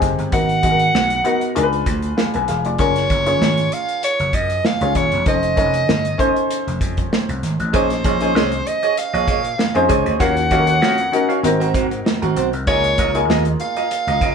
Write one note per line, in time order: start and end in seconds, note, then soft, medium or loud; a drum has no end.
0.00 0.15 F#1 medium
0.00 0.34 C4 medium
0.00 0.32 D#4 medium
0.00 0.34 G4 medium
0.00 0.22 G#4 medium
0.00 0.33 A#4 medium
0.00 kick medium
0.00 snare soft
0.00 closed hi-hat medium
0.18 0.30 G1 medium
0.18 closed hi-hat soft
0.32 0.58 G#1 medium
0.32 0.56 B3 medium
0.32 0.56 D#4 medium
0.32 0.56 F#4 medium
0.32 0.57 A#4 medium
0.32 1.52 F#5 loud
0.32 kick loud
0.32 closed hi-hat medium
0.49 closed hi-hat soft
0.63 0.89 G#1 medium
0.63 1.11 B3 medium
0.63 1.11 D#4 medium
0.63 1.11 F#4 medium
0.63 0.70 G#4 medium
0.63 kick medium
0.63 closed hi-hat medium
0.70 1.15 A#4 medium
0.79 closed hi-hat medium
0.94 1.20 B1 medium
0.94 snare loud
1.10 closed hi-hat soft
1.24 1.56 B3 medium
1.24 1.56 D#4 medium
1.24 1.56 F#4 medium
1.24 1.55 A#4 medium
1.24 closed hi-hat medium
1.41 closed hi-hat soft
1.55 1.82 C#2 medium
1.55 2.55 D4 medium
1.55 2.17 F4 medium
1.55 2.16 G#4 medium
1.55 1.63 A#4 medium
1.55 closed hi-hat medium
1.63 2.21 B4 medium
1.73 closed hi-hat soft
1.86 2.12 D2 medium
1.86 kick medium
1.86 closed hi-hat medium
2.02 closed hi-hat soft
2.17 2.34 G#4 soft
2.17 2.33 F5 medium
2.17 snare loud
2.34 2.46 B1 medium
2.34 2.48 B4 medium
2.34 2.48 G#5 medium
2.34 closed hi-hat soft
2.48 2.65 E1 medium
2.48 2.65 G#4 medium
2.48 2.64 F5 medium
2.48 snare soft
2.48 closed hi-hat medium
2.65 2.77 F1 medium
2.65 2.78 F4 soft
2.65 2.95 D5 medium
2.65 closed hi-hat soft
2.79 3.05 F#1 medium
2.79 3.14 C#4 medium
2.79 3.15 F4 medium
2.79 3.15 G#4 medium
2.79 3.15 A#4 medium
2.79 3.75 C#5 medium
2.79 kick medium
2.79 closed hi-hat medium
2.96 snare soft
2.96 closed hi-hat soft
3.10 3.36 F#1 medium
3.10 kick medium
3.10 closed hi-hat medium
3.26 4.20 C#4 medium
3.26 4.20 F4 medium
3.26 4.20 G#4 medium
3.26 4.20 C#5 medium
3.26 closed hi-hat medium
3.41 3.67 G#1 medium
3.41 snare loud
3.58 closed hi-hat soft
3.72 4.04 F5 medium
3.72 closed hi-hat medium
3.89 closed hi-hat soft
4.03 4.36 C#5 medium
4.03 closed hi-hat medium
4.20 4.31 F#1 medium
4.20 closed hi-hat soft
4.33 4.59 F#2 medium
4.33 4.68 D#5 medium
4.33 kick medium
4.33 closed hi-hat medium
4.50 closed hi-hat soft
4.65 4.98 F5 medium
4.65 snare medium
4.81 4.93 C#2 medium
4.81 5.16 C#4 medium
4.81 5.16 F4 medium
4.81 5.16 G#4 medium
4.81 5.17 C#5 medium
4.81 closed hi-hat soft
4.95 5.09 D#1 medium
4.95 5.27 C#5 medium
4.95 kick medium
4.95 closed hi-hat medium
5.12 5.24 E1 medium
5.12 closed hi-hat soft
5.26 5.52 F1 medium
5.26 5.50 C#4 medium
5.26 5.50 D#4 medium
5.26 5.50 A4 medium
5.26 5.51 C5 medium
5.26 6.47 D#5 medium
5.26 kick loud
5.26 closed hi-hat medium
5.43 closed hi-hat soft
5.56 5.83 F1 medium
5.56 6.04 C#4 medium
5.56 6.05 D#4 medium
5.56 6.05 A4 medium
5.56 6.05 C#5 medium
5.56 kick medium
5.56 closed hi-hat medium
5.74 closed hi-hat medium
5.89 6.14 G1 medium
5.89 snare loud
6.05 closed hi-hat soft
6.18 7.12 C#4 medium
6.18 7.12 D#4 medium
6.18 7.12 A4 medium
6.18 7.13 C5 medium
6.18 kick medium
6.18 closed hi-hat medium
6.36 closed hi-hat soft
6.51 closed hi-hat medium
6.67 6.79 F1 medium
6.67 closed hi-hat soft
6.81 7.06 F2 medium
6.81 kick medium
6.81 closed hi-hat medium
6.97 kick medium
6.97 closed hi-hat soft
7.13 snare loud
7.29 7.40 C2 medium
7.29 closed hi-hat soft
7.43 7.57 G#1 medium
7.43 snare soft
7.43 closed hi-hat medium
7.59 7.74 A1 medium
7.59 closed hi-hat soft
7.73 7.99 A#1 medium
7.73 8.08 C#4 medium
7.73 8.09 D#4 medium
7.73 7.88 G#4 medium
7.73 8.09 G#4 medium
7.73 8.09 C5 medium
7.73 8.69 C5 medium
7.73 7.89 C#5 medium
7.73 7.88 D#5 medium
7.73 kick loud
7.73 closed hi-hat medium
7.89 muted clean electric guitar stroke soft
7.89 snare soft
7.89 closed hi-hat soft
8.04 8.35 A#1 medium
8.04 8.16 G#4 medium
8.04 8.17 C#5 medium
8.04 8.17 D#5 medium
8.04 kick medium
8.04 closed hi-hat medium
8.20 9.14 C#4 medium
8.20 9.14 D#4 medium
8.20 9.14 G#4 medium
8.20 8.32 G#4 soft
8.20 9.15 C5 medium
8.20 8.31 C#5 soft
8.20 8.31 D#5 soft
8.20 closed hi-hat medium
8.35 8.60 C2 medium
8.35 8.50 G#4 medium
8.35 8.51 C#5 medium
8.35 8.51 D#5 medium
8.35 snare loud
8.52 muted clean electric guitar stroke soft
8.52 closed hi-hat soft
8.66 9.00 D#5 medium
8.66 muted clean electric guitar stroke soft
8.66 closed hi-hat medium
8.83 8.93 G#4 soft
8.83 8.93 C#5 medium
8.83 8.93 D#5 medium
8.83 closed hi-hat soft
8.97 9.90 F5 medium
8.97 muted clean electric guitar stroke soft
8.97 closed hi-hat medium
9.13 9.25 A#1 medium
9.13 9.26 G#4 soft
9.13 9.26 C#5 medium
9.13 9.26 D#5 medium
9.13 closed hi-hat soft
9.28 9.53 A#2 loud
9.28 9.39 G#4 medium
9.28 9.40 C#5 medium
9.28 9.40 D#5 medium
9.28 kick medium
9.28 closed hi-hat medium
9.44 muted clean electric guitar stroke soft
9.44 closed hi-hat soft
9.58 muted clean electric guitar stroke soft
9.58 snare medium
9.75 9.87 F2 medium
9.75 10.10 C#4 medium
9.75 10.10 D#4 medium
9.75 10.10 G#4 medium
9.75 10.10 C5 medium
9.75 muted clean electric guitar stroke soft
9.75 closed hi-hat soft
9.89 10.03 C#2 medium
9.89 10.04 G#4 medium
9.89 10.05 C#5 medium
9.89 10.05 D#5 medium
9.89 kick medium
9.89 closed hi-hat medium
10.06 10.18 D2 medium
10.06 10.17 G#4 soft
10.06 10.16 C#5 soft
10.06 10.16 D#5 medium
10.06 closed hi-hat soft
10.20 10.46 D#2 medium
10.20 10.44 C#4 medium
10.20 10.44 F4 medium
10.20 10.35 F#4 medium
10.20 10.44 F#4 medium
10.20 10.44 A#4 medium
10.20 10.35 C#5 medium
10.20 10.35 F5 medium
10.20 11.40 F#5 loud
10.20 kick medium
10.20 closed hi-hat medium
10.36 muted clean electric guitar stroke soft
10.36 closed hi-hat soft
10.50 10.82 D#2 medium
10.50 10.99 C#4 medium
10.50 10.99 D#4 medium
10.50 10.63 F#4 medium
10.50 10.99 F#4 medium
10.50 10.58 A4 medium
10.50 10.63 C#5 medium
10.50 10.63 F5 medium
10.50 kick medium
10.50 closed hi-hat medium
10.58 11.03 A#4 medium
10.67 10.78 F#4 soft
10.67 10.78 C#5 soft
10.67 10.77 F#5 medium
10.67 closed hi-hat medium
10.82 11.07 F2 medium
10.82 10.97 F#4 medium
10.82 10.97 C#5 medium
10.82 10.97 F5 medium
10.82 snare loud
10.98 muted clean electric guitar stroke soft
10.98 closed hi-hat medium
11.12 11.43 C#4 medium
11.12 11.42 D#4 medium
11.12 11.43 F#4 medium
11.12 11.43 A#4 medium
11.12 muted clean electric guitar stroke soft
11.12 closed hi-hat medium
11.29 11.40 F#4 soft
11.29 11.39 C#5 soft
11.29 11.39 F5 medium
11.29 closed hi-hat soft
11.43 11.57 G#1 medium
11.43 12.43 C4 medium
11.43 12.43 D#4 medium
11.43 12.43 F#4 medium
11.43 12.43 A#4 medium
11.43 muted clean electric guitar stroke soft
11.43 closed hi-hat medium
11.60 11.72 G#1 medium
11.60 11.73 C4 medium
11.60 11.74 F#4 medium
11.60 11.73 A#4 medium
11.60 closed hi-hat soft
11.74 12.00 G#2 medium
11.74 11.86 C4 medium
11.74 11.86 F#4 medium
11.74 11.87 A#4 medium
11.74 kick medium
11.74 closed hi-hat medium
11.91 muted clean electric guitar stroke soft
11.91 closed hi-hat soft
12.05 muted clean electric guitar stroke soft
12.05 snare medium
12.22 12.34 G#1 medium
12.22 12.35 C4 medium
12.22 12.35 F#4 medium
12.22 12.35 A#4 medium
12.22 closed hi-hat soft
12.36 12.53 B1 medium
12.36 12.48 C4 medium
12.36 12.48 F#4 medium
12.36 12.48 C5 medium
12.36 closed hi-hat medium
12.53 12.65 C2 medium
12.53 muted clean electric guitar stroke soft
12.53 closed hi-hat soft
12.67 12.93 C#2 medium
12.67 13.02 A#3 medium
12.67 13.02 D#4 medium
12.67 13.03 F4 medium
12.67 12.82 F4 medium
12.67 13.03 G#4 medium
12.67 12.83 A#4 medium
12.67 13.25 C#5 loud
12.67 12.83 D#5 medium
12.67 kick loud
12.67 closed hi-hat medium
12.84 muted clean electric guitar stroke soft
12.84 closed hi-hat soft
12.98 13.24 C#2 medium
12.98 13.10 F4 medium
12.98 13.11 A#4 medium
12.98 13.11 D#5 medium
12.98 kick medium
12.98 closed hi-hat medium
13.14 14.07 A#3 medium
13.14 14.07 D#4 medium
13.14 14.08 F4 medium
13.14 13.26 F4 soft
13.14 14.08 G#4 medium
13.14 13.25 A#4 soft
13.14 13.25 D#5 medium
13.14 closed hi-hat medium
13.29 13.54 D#2 medium
13.29 13.44 F4 medium
13.29 13.44 A#4 medium
13.29 13.45 D#5 medium
13.29 snare loud
13.45 muted clean electric guitar stroke soft
13.45 closed hi-hat soft
13.60 14.35 F5 loud
13.60 muted clean electric guitar stroke soft
13.60 closed hi-hat medium
13.76 13.87 F4 soft
13.76 13.87 A#4 soft
13.76 13.86 D#5 medium
13.76 closed hi-hat soft
13.91 muted clean electric guitar stroke soft
13.91 closed hi-hat medium
14.07 14.19 C#2 medium
14.07 14.21 F4 medium
14.07 14.21 A#4 medium
14.07 14.20 D#5 medium
14.07 closed hi-hat soft
14.21 14.35 C#3 medium
14.21 14.33 F4 medium
14.21 14.34 A#4 medium
14.21 14.34 D#5 medium
14.21 kick medium
14.21 closed hi-hat medium